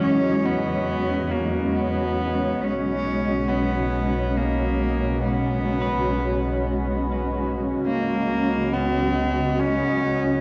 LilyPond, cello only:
\new Staff \with { instrumentName = "Cello" } { \time 3/4 \key b \major \tempo 4 = 69 cis'8 b4 ais8 b4 | cis'4 b4 ais4 | b2 r4 | ais4 b4 cis'4 | }